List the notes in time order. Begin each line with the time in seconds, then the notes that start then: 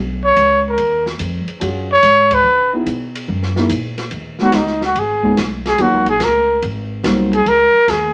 Already playing: B1
0.25 C#5
0.36 C#2, kick, hi-hat pedal, ride
0.69 A#4
0.78 D#2, kick, ride
1.06 snare
1.19 F2, kick, hi-hat pedal, ride
1.46 muted upright bass stroke, ride
1.60 F#2 C#4 F4 F#4 G#4, kick, ride
1.92 C#5
2.02 G#2, kick, hi-hat pedal, ride
2.31 B4, kick, ride
2.44 C#3
2.73 B3 D#4 E4 G#4
2.86 B2, kick, hi-hat pedal, ride
3.15 ride
3.28 F#2, kick
3.43 snare
3.56 A#3 D#4 E4 G#4, snare
3.69 A#2, kick, hi-hat pedal, ride
3.98 snare, ride
4.11 D#2, kick, ride
4.39 G#3 B3 C#4 D#4 F#4, snare
4.43 F#4
4.52 C#2, kick, snare, hi-hat pedal, ride
4.56 D#4
4.67 snare
4.81 F#4, snare
4.95 G#1 G#4, kick, ride
5.23 G#3 B3 C#4 D#4 G#4, kick
5.37 B1, snare, hi-hat pedal, ride
5.66 G#4, snare, ride
5.78 D#2 F#3 A#3 C#4 D#4 F4 F#4, kick, ride
5.92 C#2
6.05 A#1, ride
6.09 G#4
6.20 C#2 A#4, kick, snare, hi-hat pedal, ride
6.62 G#1, kick, ride
7.03 C2 F#3 A#3 C4 D#4 F4, kick, snare, hi-hat pedal, ride
7.33 G#4, ride
7.46 C#2 A#4, kick, ride
7.74 muted upright bass stroke
7.88 D#2 G#4, kick, snare, hi-hat pedal, ride